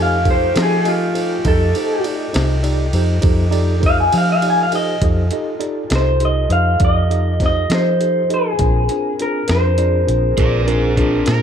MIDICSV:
0, 0, Header, 1, 8, 480
1, 0, Start_track
1, 0, Tempo, 595238
1, 1164, Time_signature, 12, 3, 24, 8
1, 9211, End_track
2, 0, Start_track
2, 0, Title_t, "Clean electric guitar"
2, 0, Program_c, 0, 27
2, 20, Note_on_c, 0, 77, 83
2, 226, Note_off_c, 0, 77, 0
2, 247, Note_on_c, 0, 72, 88
2, 459, Note_off_c, 0, 72, 0
2, 504, Note_on_c, 0, 68, 85
2, 707, Note_on_c, 0, 65, 74
2, 708, Note_off_c, 0, 68, 0
2, 1161, Note_off_c, 0, 65, 0
2, 1192, Note_on_c, 0, 69, 99
2, 1644, Note_off_c, 0, 69, 0
2, 3115, Note_on_c, 0, 77, 97
2, 3216, Note_off_c, 0, 77, 0
2, 3227, Note_on_c, 0, 80, 83
2, 3332, Note_off_c, 0, 80, 0
2, 3368, Note_on_c, 0, 77, 89
2, 3463, Note_off_c, 0, 77, 0
2, 3485, Note_on_c, 0, 77, 95
2, 3581, Note_off_c, 0, 77, 0
2, 3628, Note_on_c, 0, 80, 89
2, 3713, Note_off_c, 0, 80, 0
2, 3735, Note_on_c, 0, 77, 89
2, 3826, Note_off_c, 0, 77, 0
2, 3834, Note_on_c, 0, 75, 105
2, 4052, Note_off_c, 0, 75, 0
2, 4802, Note_on_c, 0, 72, 85
2, 5007, Note_off_c, 0, 72, 0
2, 5040, Note_on_c, 0, 75, 93
2, 5258, Note_off_c, 0, 75, 0
2, 5262, Note_on_c, 0, 77, 99
2, 5477, Note_off_c, 0, 77, 0
2, 5520, Note_on_c, 0, 75, 94
2, 5996, Note_off_c, 0, 75, 0
2, 6013, Note_on_c, 0, 75, 92
2, 6235, Note_off_c, 0, 75, 0
2, 6243, Note_on_c, 0, 72, 77
2, 6718, Note_off_c, 0, 72, 0
2, 6724, Note_on_c, 0, 68, 80
2, 7431, Note_off_c, 0, 68, 0
2, 7435, Note_on_c, 0, 70, 75
2, 7665, Note_off_c, 0, 70, 0
2, 7668, Note_on_c, 0, 72, 73
2, 8588, Note_off_c, 0, 72, 0
2, 8588, Note_on_c, 0, 70, 73
2, 9067, Note_off_c, 0, 70, 0
2, 9211, End_track
3, 0, Start_track
3, 0, Title_t, "Electric slide guitar"
3, 0, Program_c, 1, 29
3, 8370, Note_on_c, 1, 70, 83
3, 8381, Note_on_c, 1, 74, 90
3, 8607, Note_off_c, 1, 74, 0
3, 8608, Note_off_c, 1, 70, 0
3, 8610, Note_on_c, 1, 68, 71
3, 8615, Note_on_c, 1, 72, 77
3, 8832, Note_off_c, 1, 68, 0
3, 8843, Note_off_c, 1, 72, 0
3, 8848, Note_on_c, 1, 62, 63
3, 8855, Note_on_c, 1, 70, 73
3, 9071, Note_off_c, 1, 62, 0
3, 9081, Note_off_c, 1, 70, 0
3, 9090, Note_on_c, 1, 70, 90
3, 9211, Note_off_c, 1, 70, 0
3, 9211, End_track
4, 0, Start_track
4, 0, Title_t, "Tine electric piano"
4, 0, Program_c, 2, 4
4, 0, Note_on_c, 2, 63, 64
4, 0, Note_on_c, 2, 67, 62
4, 0, Note_on_c, 2, 69, 57
4, 0, Note_on_c, 2, 72, 68
4, 140, Note_off_c, 2, 63, 0
4, 140, Note_off_c, 2, 69, 0
4, 141, Note_off_c, 2, 67, 0
4, 144, Note_off_c, 2, 72, 0
4, 203, Note_on_c, 2, 63, 58
4, 203, Note_on_c, 2, 69, 57
4, 207, Note_on_c, 2, 67, 57
4, 212, Note_on_c, 2, 72, 68
4, 384, Note_off_c, 2, 63, 0
4, 384, Note_off_c, 2, 69, 0
4, 385, Note_off_c, 2, 67, 0
4, 388, Note_off_c, 2, 72, 0
4, 437, Note_on_c, 2, 63, 57
4, 437, Note_on_c, 2, 67, 55
4, 445, Note_on_c, 2, 72, 65
4, 446, Note_on_c, 2, 69, 54
4, 620, Note_off_c, 2, 67, 0
4, 621, Note_off_c, 2, 63, 0
4, 625, Note_off_c, 2, 69, 0
4, 625, Note_off_c, 2, 72, 0
4, 684, Note_on_c, 2, 63, 56
4, 686, Note_on_c, 2, 67, 49
4, 689, Note_on_c, 2, 69, 52
4, 692, Note_on_c, 2, 75, 61
4, 864, Note_off_c, 2, 63, 0
4, 865, Note_off_c, 2, 67, 0
4, 867, Note_off_c, 2, 69, 0
4, 868, Note_off_c, 2, 75, 0
4, 923, Note_on_c, 2, 63, 57
4, 924, Note_on_c, 2, 67, 57
4, 925, Note_on_c, 2, 69, 52
4, 926, Note_on_c, 2, 72, 61
4, 1103, Note_off_c, 2, 63, 0
4, 1104, Note_off_c, 2, 67, 0
4, 1105, Note_off_c, 2, 69, 0
4, 1105, Note_off_c, 2, 72, 0
4, 1172, Note_on_c, 2, 63, 70
4, 1173, Note_on_c, 2, 69, 66
4, 1176, Note_on_c, 2, 67, 62
4, 1182, Note_on_c, 2, 75, 73
4, 1348, Note_off_c, 2, 63, 0
4, 1349, Note_off_c, 2, 69, 0
4, 1350, Note_off_c, 2, 67, 0
4, 1353, Note_off_c, 2, 75, 0
4, 1419, Note_on_c, 2, 67, 53
4, 1419, Note_on_c, 2, 69, 54
4, 1420, Note_on_c, 2, 63, 64
4, 1423, Note_on_c, 2, 72, 62
4, 1591, Note_off_c, 2, 69, 0
4, 1592, Note_off_c, 2, 63, 0
4, 1592, Note_off_c, 2, 67, 0
4, 1594, Note_off_c, 2, 72, 0
4, 1645, Note_on_c, 2, 63, 58
4, 1647, Note_on_c, 2, 69, 52
4, 1649, Note_on_c, 2, 67, 55
4, 1649, Note_on_c, 2, 74, 62
4, 1825, Note_off_c, 2, 63, 0
4, 1825, Note_off_c, 2, 69, 0
4, 1826, Note_off_c, 2, 67, 0
4, 1826, Note_off_c, 2, 74, 0
4, 1881, Note_on_c, 2, 63, 71
4, 1882, Note_on_c, 2, 67, 64
4, 1887, Note_on_c, 2, 69, 64
4, 1889, Note_on_c, 2, 72, 77
4, 2063, Note_off_c, 2, 63, 0
4, 2063, Note_off_c, 2, 67, 0
4, 2065, Note_off_c, 2, 69, 0
4, 2066, Note_off_c, 2, 72, 0
4, 2118, Note_on_c, 2, 69, 69
4, 2119, Note_on_c, 2, 63, 71
4, 2123, Note_on_c, 2, 67, 64
4, 2125, Note_on_c, 2, 74, 73
4, 2301, Note_off_c, 2, 63, 0
4, 2301, Note_off_c, 2, 69, 0
4, 2303, Note_off_c, 2, 67, 0
4, 2304, Note_off_c, 2, 74, 0
4, 2368, Note_on_c, 2, 63, 69
4, 2372, Note_on_c, 2, 67, 66
4, 2375, Note_on_c, 2, 72, 80
4, 2376, Note_on_c, 2, 69, 67
4, 2546, Note_off_c, 2, 63, 0
4, 2548, Note_off_c, 2, 67, 0
4, 2549, Note_off_c, 2, 72, 0
4, 2550, Note_off_c, 2, 69, 0
4, 2592, Note_on_c, 2, 63, 73
4, 2594, Note_on_c, 2, 67, 66
4, 2598, Note_on_c, 2, 69, 65
4, 2598, Note_on_c, 2, 72, 73
4, 2778, Note_off_c, 2, 63, 0
4, 2779, Note_off_c, 2, 67, 0
4, 2781, Note_off_c, 2, 69, 0
4, 2781, Note_off_c, 2, 72, 0
4, 2828, Note_on_c, 2, 63, 77
4, 2833, Note_on_c, 2, 67, 75
4, 2838, Note_on_c, 2, 69, 66
4, 2838, Note_on_c, 2, 74, 87
4, 3016, Note_off_c, 2, 63, 0
4, 3018, Note_off_c, 2, 67, 0
4, 3021, Note_off_c, 2, 69, 0
4, 3021, Note_off_c, 2, 74, 0
4, 3063, Note_on_c, 2, 63, 66
4, 3066, Note_on_c, 2, 69, 61
4, 3069, Note_on_c, 2, 67, 53
4, 3077, Note_on_c, 2, 72, 67
4, 3253, Note_off_c, 2, 63, 0
4, 3255, Note_off_c, 2, 69, 0
4, 3256, Note_off_c, 2, 67, 0
4, 3260, Note_off_c, 2, 72, 0
4, 3328, Note_on_c, 2, 63, 55
4, 3328, Note_on_c, 2, 67, 58
4, 3334, Note_on_c, 2, 69, 55
4, 3338, Note_on_c, 2, 72, 66
4, 3506, Note_off_c, 2, 63, 0
4, 3506, Note_off_c, 2, 67, 0
4, 3509, Note_off_c, 2, 69, 0
4, 3511, Note_off_c, 2, 72, 0
4, 3565, Note_on_c, 2, 63, 56
4, 3566, Note_on_c, 2, 67, 52
4, 3570, Note_on_c, 2, 69, 49
4, 3577, Note_on_c, 2, 74, 62
4, 3744, Note_off_c, 2, 63, 0
4, 3745, Note_off_c, 2, 67, 0
4, 3747, Note_off_c, 2, 69, 0
4, 3750, Note_off_c, 2, 74, 0
4, 3810, Note_on_c, 2, 67, 56
4, 3812, Note_on_c, 2, 69, 57
4, 3814, Note_on_c, 2, 63, 61
4, 3822, Note_on_c, 2, 72, 64
4, 3987, Note_off_c, 2, 67, 0
4, 3988, Note_off_c, 2, 69, 0
4, 3989, Note_off_c, 2, 63, 0
4, 3993, Note_off_c, 2, 72, 0
4, 4050, Note_on_c, 2, 67, 57
4, 4053, Note_on_c, 2, 63, 61
4, 4055, Note_on_c, 2, 69, 54
4, 4055, Note_on_c, 2, 72, 69
4, 4227, Note_off_c, 2, 67, 0
4, 4228, Note_off_c, 2, 63, 0
4, 4229, Note_off_c, 2, 69, 0
4, 4229, Note_off_c, 2, 72, 0
4, 4290, Note_on_c, 2, 63, 63
4, 4290, Note_on_c, 2, 69, 58
4, 4291, Note_on_c, 2, 67, 60
4, 4298, Note_on_c, 2, 75, 72
4, 4467, Note_off_c, 2, 63, 0
4, 4467, Note_off_c, 2, 67, 0
4, 4467, Note_off_c, 2, 69, 0
4, 4471, Note_off_c, 2, 75, 0
4, 4513, Note_on_c, 2, 63, 62
4, 4515, Note_on_c, 2, 67, 55
4, 4516, Note_on_c, 2, 69, 54
4, 4516, Note_on_c, 2, 74, 69
4, 4698, Note_off_c, 2, 63, 0
4, 4699, Note_off_c, 2, 67, 0
4, 4700, Note_off_c, 2, 69, 0
4, 4700, Note_off_c, 2, 74, 0
4, 4755, Note_on_c, 2, 63, 54
4, 4759, Note_on_c, 2, 67, 47
4, 4762, Note_on_c, 2, 75, 61
4, 4765, Note_on_c, 2, 69, 44
4, 4939, Note_off_c, 2, 63, 0
4, 4942, Note_off_c, 2, 67, 0
4, 4943, Note_off_c, 2, 75, 0
4, 4944, Note_off_c, 2, 69, 0
4, 5005, Note_on_c, 2, 63, 52
4, 5012, Note_on_c, 2, 67, 47
4, 5016, Note_on_c, 2, 69, 48
4, 5018, Note_on_c, 2, 72, 59
4, 5184, Note_off_c, 2, 63, 0
4, 5188, Note_off_c, 2, 67, 0
4, 5190, Note_off_c, 2, 69, 0
4, 5191, Note_off_c, 2, 72, 0
4, 5245, Note_on_c, 2, 63, 52
4, 5247, Note_on_c, 2, 67, 49
4, 5249, Note_on_c, 2, 72, 64
4, 5254, Note_on_c, 2, 69, 48
4, 5424, Note_off_c, 2, 63, 0
4, 5425, Note_off_c, 2, 67, 0
4, 5427, Note_off_c, 2, 72, 0
4, 5429, Note_off_c, 2, 69, 0
4, 5487, Note_on_c, 2, 67, 48
4, 5488, Note_on_c, 2, 63, 53
4, 5488, Note_on_c, 2, 74, 61
4, 5489, Note_on_c, 2, 69, 46
4, 5666, Note_off_c, 2, 63, 0
4, 5666, Note_off_c, 2, 67, 0
4, 5666, Note_off_c, 2, 74, 0
4, 5667, Note_off_c, 2, 69, 0
4, 5724, Note_on_c, 2, 67, 52
4, 5725, Note_on_c, 2, 63, 57
4, 5730, Note_on_c, 2, 69, 52
4, 5736, Note_on_c, 2, 75, 64
4, 5904, Note_off_c, 2, 67, 0
4, 5905, Note_off_c, 2, 63, 0
4, 5907, Note_off_c, 2, 69, 0
4, 5910, Note_off_c, 2, 75, 0
4, 5974, Note_on_c, 2, 63, 56
4, 5975, Note_on_c, 2, 67, 50
4, 5981, Note_on_c, 2, 69, 50
4, 5982, Note_on_c, 2, 72, 64
4, 6149, Note_off_c, 2, 63, 0
4, 6150, Note_off_c, 2, 67, 0
4, 6153, Note_off_c, 2, 69, 0
4, 6153, Note_off_c, 2, 72, 0
4, 6209, Note_on_c, 2, 63, 52
4, 6214, Note_on_c, 2, 69, 49
4, 6216, Note_on_c, 2, 67, 46
4, 6216, Note_on_c, 2, 72, 59
4, 6387, Note_off_c, 2, 63, 0
4, 6390, Note_off_c, 2, 67, 0
4, 6390, Note_off_c, 2, 69, 0
4, 6390, Note_off_c, 2, 72, 0
4, 6451, Note_on_c, 2, 67, 43
4, 6453, Note_on_c, 2, 63, 49
4, 6455, Note_on_c, 2, 72, 59
4, 6456, Note_on_c, 2, 69, 42
4, 6628, Note_off_c, 2, 67, 0
4, 6629, Note_off_c, 2, 63, 0
4, 6630, Note_off_c, 2, 69, 0
4, 6630, Note_off_c, 2, 72, 0
4, 6689, Note_on_c, 2, 67, 49
4, 6689, Note_on_c, 2, 69, 47
4, 6690, Note_on_c, 2, 63, 54
4, 6700, Note_on_c, 2, 75, 59
4, 6867, Note_off_c, 2, 67, 0
4, 6867, Note_off_c, 2, 69, 0
4, 6868, Note_off_c, 2, 63, 0
4, 6872, Note_off_c, 2, 75, 0
4, 6936, Note_on_c, 2, 62, 60
4, 6936, Note_on_c, 2, 65, 59
4, 6943, Note_on_c, 2, 68, 56
4, 6945, Note_on_c, 2, 72, 68
4, 7111, Note_off_c, 2, 62, 0
4, 7111, Note_off_c, 2, 65, 0
4, 7114, Note_off_c, 2, 68, 0
4, 7115, Note_off_c, 2, 72, 0
4, 7183, Note_on_c, 2, 65, 45
4, 7185, Note_on_c, 2, 68, 50
4, 7186, Note_on_c, 2, 62, 52
4, 7188, Note_on_c, 2, 72, 60
4, 7354, Note_off_c, 2, 65, 0
4, 7355, Note_off_c, 2, 68, 0
4, 7356, Note_off_c, 2, 62, 0
4, 7357, Note_off_c, 2, 72, 0
4, 7424, Note_on_c, 2, 62, 54
4, 7425, Note_on_c, 2, 65, 47
4, 7426, Note_on_c, 2, 72, 52
4, 7427, Note_on_c, 2, 68, 48
4, 7595, Note_off_c, 2, 62, 0
4, 7595, Note_off_c, 2, 65, 0
4, 7596, Note_off_c, 2, 68, 0
4, 7596, Note_off_c, 2, 72, 0
4, 7656, Note_on_c, 2, 62, 53
4, 7660, Note_on_c, 2, 65, 47
4, 7660, Note_on_c, 2, 68, 49
4, 7661, Note_on_c, 2, 72, 57
4, 7831, Note_off_c, 2, 62, 0
4, 7833, Note_off_c, 2, 65, 0
4, 7833, Note_off_c, 2, 68, 0
4, 7834, Note_off_c, 2, 72, 0
4, 7888, Note_on_c, 2, 62, 53
4, 7888, Note_on_c, 2, 65, 45
4, 7890, Note_on_c, 2, 74, 61
4, 7896, Note_on_c, 2, 68, 46
4, 8067, Note_off_c, 2, 62, 0
4, 8067, Note_off_c, 2, 65, 0
4, 8068, Note_off_c, 2, 74, 0
4, 8071, Note_off_c, 2, 68, 0
4, 8122, Note_on_c, 2, 62, 54
4, 8123, Note_on_c, 2, 65, 51
4, 8125, Note_on_c, 2, 68, 49
4, 8126, Note_on_c, 2, 72, 60
4, 8304, Note_off_c, 2, 62, 0
4, 8305, Note_off_c, 2, 65, 0
4, 8306, Note_off_c, 2, 68, 0
4, 8306, Note_off_c, 2, 72, 0
4, 8362, Note_on_c, 2, 62, 64
4, 8364, Note_on_c, 2, 65, 60
4, 8371, Note_on_c, 2, 68, 59
4, 8375, Note_on_c, 2, 70, 71
4, 8544, Note_off_c, 2, 62, 0
4, 8546, Note_off_c, 2, 65, 0
4, 8549, Note_off_c, 2, 68, 0
4, 8551, Note_off_c, 2, 70, 0
4, 8606, Note_on_c, 2, 65, 63
4, 8607, Note_on_c, 2, 62, 70
4, 8610, Note_on_c, 2, 68, 61
4, 8614, Note_on_c, 2, 70, 76
4, 8787, Note_off_c, 2, 62, 0
4, 8787, Note_off_c, 2, 65, 0
4, 8789, Note_off_c, 2, 68, 0
4, 8791, Note_off_c, 2, 70, 0
4, 8851, Note_on_c, 2, 68, 62
4, 8852, Note_on_c, 2, 62, 65
4, 8852, Note_on_c, 2, 72, 75
4, 8855, Note_on_c, 2, 65, 60
4, 9030, Note_off_c, 2, 62, 0
4, 9030, Note_off_c, 2, 68, 0
4, 9030, Note_off_c, 2, 72, 0
4, 9031, Note_off_c, 2, 65, 0
4, 9083, Note_on_c, 2, 65, 59
4, 9084, Note_on_c, 2, 62, 59
4, 9085, Note_on_c, 2, 72, 68
4, 9087, Note_on_c, 2, 68, 54
4, 9211, Note_off_c, 2, 62, 0
4, 9211, Note_off_c, 2, 65, 0
4, 9211, Note_off_c, 2, 68, 0
4, 9211, Note_off_c, 2, 72, 0
4, 9211, End_track
5, 0, Start_track
5, 0, Title_t, "Tonewheel organ"
5, 0, Program_c, 3, 16
5, 0, Note_on_c, 3, 63, 67
5, 0, Note_on_c, 3, 65, 67
5, 0, Note_on_c, 3, 67, 71
5, 0, Note_on_c, 3, 69, 76
5, 1128, Note_off_c, 3, 67, 0
5, 1128, Note_off_c, 3, 69, 0
5, 1129, Note_off_c, 3, 63, 0
5, 1129, Note_off_c, 3, 65, 0
5, 1166, Note_on_c, 3, 67, 66
5, 1167, Note_on_c, 3, 65, 66
5, 1167, Note_on_c, 3, 69, 69
5, 1169, Note_on_c, 3, 75, 68
5, 4015, Note_off_c, 3, 67, 0
5, 4016, Note_off_c, 3, 65, 0
5, 4016, Note_off_c, 3, 69, 0
5, 4017, Note_off_c, 3, 75, 0
5, 4047, Note_on_c, 3, 65, 60
5, 4047, Note_on_c, 3, 69, 64
5, 4048, Note_on_c, 3, 67, 61
5, 4050, Note_on_c, 3, 63, 64
5, 6898, Note_off_c, 3, 65, 0
5, 6898, Note_off_c, 3, 67, 0
5, 6898, Note_off_c, 3, 69, 0
5, 6900, Note_off_c, 3, 63, 0
5, 6914, Note_on_c, 3, 70, 67
5, 6917, Note_on_c, 3, 62, 66
5, 6922, Note_on_c, 3, 68, 64
5, 6923, Note_on_c, 3, 60, 58
5, 9211, Note_off_c, 3, 60, 0
5, 9211, Note_off_c, 3, 62, 0
5, 9211, Note_off_c, 3, 68, 0
5, 9211, Note_off_c, 3, 70, 0
5, 9211, End_track
6, 0, Start_track
6, 0, Title_t, "Horn section"
6, 0, Program_c, 4, 61
6, 0, Note_on_c, 4, 57, 71
6, 0, Note_on_c, 4, 63, 71
6, 0, Note_on_c, 4, 67, 89
6, 4007, Note_off_c, 4, 57, 0
6, 4008, Note_off_c, 4, 63, 0
6, 4012, Note_off_c, 4, 67, 0
6, 9211, End_track
7, 0, Start_track
7, 0, Title_t, "Fingered electric bass"
7, 0, Program_c, 5, 33
7, 0, Note_on_c, 5, 41, 98
7, 410, Note_off_c, 5, 41, 0
7, 452, Note_on_c, 5, 53, 87
7, 1136, Note_off_c, 5, 53, 0
7, 1170, Note_on_c, 5, 41, 97
7, 1388, Note_off_c, 5, 41, 0
7, 1895, Note_on_c, 5, 36, 84
7, 2337, Note_off_c, 5, 36, 0
7, 2364, Note_on_c, 5, 41, 84
7, 2585, Note_off_c, 5, 41, 0
7, 2603, Note_on_c, 5, 41, 100
7, 3291, Note_off_c, 5, 41, 0
7, 3335, Note_on_c, 5, 53, 98
7, 4017, Note_off_c, 5, 53, 0
7, 4045, Note_on_c, 5, 41, 83
7, 4265, Note_off_c, 5, 41, 0
7, 4765, Note_on_c, 5, 36, 83
7, 5212, Note_off_c, 5, 36, 0
7, 5237, Note_on_c, 5, 41, 80
7, 5461, Note_off_c, 5, 41, 0
7, 5482, Note_on_c, 5, 41, 88
7, 6171, Note_off_c, 5, 41, 0
7, 6206, Note_on_c, 5, 53, 86
7, 6894, Note_off_c, 5, 53, 0
7, 6932, Note_on_c, 5, 34, 87
7, 7150, Note_off_c, 5, 34, 0
7, 7654, Note_on_c, 5, 41, 82
7, 8098, Note_off_c, 5, 41, 0
7, 8128, Note_on_c, 5, 34, 77
7, 8348, Note_off_c, 5, 34, 0
7, 8363, Note_on_c, 5, 34, 94
7, 9053, Note_off_c, 5, 34, 0
7, 9093, Note_on_c, 5, 46, 79
7, 9211, Note_off_c, 5, 46, 0
7, 9211, End_track
8, 0, Start_track
8, 0, Title_t, "Drums"
8, 205, Note_on_c, 9, 36, 82
8, 205, Note_on_c, 9, 51, 64
8, 285, Note_off_c, 9, 36, 0
8, 286, Note_off_c, 9, 51, 0
8, 449, Note_on_c, 9, 51, 88
8, 462, Note_on_c, 9, 38, 108
8, 529, Note_off_c, 9, 51, 0
8, 543, Note_off_c, 9, 38, 0
8, 688, Note_on_c, 9, 51, 66
8, 769, Note_off_c, 9, 51, 0
8, 930, Note_on_c, 9, 51, 66
8, 1011, Note_off_c, 9, 51, 0
8, 1167, Note_on_c, 9, 51, 84
8, 1169, Note_on_c, 9, 36, 112
8, 1248, Note_off_c, 9, 51, 0
8, 1250, Note_off_c, 9, 36, 0
8, 1411, Note_on_c, 9, 51, 67
8, 1492, Note_off_c, 9, 51, 0
8, 1648, Note_on_c, 9, 51, 65
8, 1729, Note_off_c, 9, 51, 0
8, 1889, Note_on_c, 9, 51, 84
8, 1903, Note_on_c, 9, 38, 107
8, 1970, Note_off_c, 9, 51, 0
8, 1983, Note_off_c, 9, 38, 0
8, 2127, Note_on_c, 9, 51, 60
8, 2207, Note_off_c, 9, 51, 0
8, 2363, Note_on_c, 9, 51, 68
8, 2444, Note_off_c, 9, 51, 0
8, 2597, Note_on_c, 9, 51, 80
8, 2607, Note_on_c, 9, 36, 116
8, 2678, Note_off_c, 9, 51, 0
8, 2688, Note_off_c, 9, 36, 0
8, 2842, Note_on_c, 9, 51, 55
8, 2922, Note_off_c, 9, 51, 0
8, 3088, Note_on_c, 9, 36, 86
8, 3088, Note_on_c, 9, 51, 64
8, 3169, Note_off_c, 9, 36, 0
8, 3169, Note_off_c, 9, 51, 0
8, 3326, Note_on_c, 9, 51, 80
8, 3407, Note_off_c, 9, 51, 0
8, 3566, Note_on_c, 9, 51, 60
8, 3646, Note_off_c, 9, 51, 0
8, 3806, Note_on_c, 9, 51, 64
8, 3887, Note_off_c, 9, 51, 0
8, 4045, Note_on_c, 9, 42, 83
8, 4046, Note_on_c, 9, 36, 102
8, 4126, Note_off_c, 9, 36, 0
8, 4126, Note_off_c, 9, 42, 0
8, 4279, Note_on_c, 9, 42, 66
8, 4360, Note_off_c, 9, 42, 0
8, 4521, Note_on_c, 9, 42, 63
8, 4601, Note_off_c, 9, 42, 0
8, 4759, Note_on_c, 9, 42, 81
8, 4773, Note_on_c, 9, 38, 96
8, 4840, Note_off_c, 9, 42, 0
8, 4854, Note_off_c, 9, 38, 0
8, 5002, Note_on_c, 9, 42, 59
8, 5083, Note_off_c, 9, 42, 0
8, 5243, Note_on_c, 9, 42, 60
8, 5324, Note_off_c, 9, 42, 0
8, 5482, Note_on_c, 9, 42, 76
8, 5487, Note_on_c, 9, 36, 105
8, 5562, Note_off_c, 9, 42, 0
8, 5567, Note_off_c, 9, 36, 0
8, 5734, Note_on_c, 9, 42, 53
8, 5815, Note_off_c, 9, 42, 0
8, 5968, Note_on_c, 9, 36, 72
8, 5971, Note_on_c, 9, 42, 52
8, 5984, Note_on_c, 9, 38, 28
8, 6048, Note_off_c, 9, 36, 0
8, 6051, Note_off_c, 9, 42, 0
8, 6065, Note_off_c, 9, 38, 0
8, 6209, Note_on_c, 9, 42, 74
8, 6223, Note_on_c, 9, 38, 100
8, 6290, Note_off_c, 9, 42, 0
8, 6303, Note_off_c, 9, 38, 0
8, 6456, Note_on_c, 9, 42, 53
8, 6537, Note_off_c, 9, 42, 0
8, 6696, Note_on_c, 9, 42, 52
8, 6776, Note_off_c, 9, 42, 0
8, 6926, Note_on_c, 9, 42, 76
8, 6929, Note_on_c, 9, 36, 110
8, 7006, Note_off_c, 9, 42, 0
8, 7010, Note_off_c, 9, 36, 0
8, 7169, Note_on_c, 9, 42, 61
8, 7250, Note_off_c, 9, 42, 0
8, 7415, Note_on_c, 9, 42, 64
8, 7495, Note_off_c, 9, 42, 0
8, 7643, Note_on_c, 9, 42, 74
8, 7657, Note_on_c, 9, 38, 101
8, 7723, Note_off_c, 9, 42, 0
8, 7737, Note_off_c, 9, 38, 0
8, 7885, Note_on_c, 9, 42, 64
8, 7966, Note_off_c, 9, 42, 0
8, 8133, Note_on_c, 9, 42, 64
8, 8213, Note_off_c, 9, 42, 0
8, 8367, Note_on_c, 9, 42, 91
8, 8369, Note_on_c, 9, 36, 104
8, 8447, Note_off_c, 9, 42, 0
8, 8449, Note_off_c, 9, 36, 0
8, 8610, Note_on_c, 9, 42, 57
8, 8691, Note_off_c, 9, 42, 0
8, 8849, Note_on_c, 9, 36, 67
8, 8850, Note_on_c, 9, 42, 56
8, 8929, Note_off_c, 9, 36, 0
8, 8930, Note_off_c, 9, 42, 0
8, 9080, Note_on_c, 9, 42, 79
8, 9093, Note_on_c, 9, 38, 93
8, 9160, Note_off_c, 9, 42, 0
8, 9174, Note_off_c, 9, 38, 0
8, 9211, End_track
0, 0, End_of_file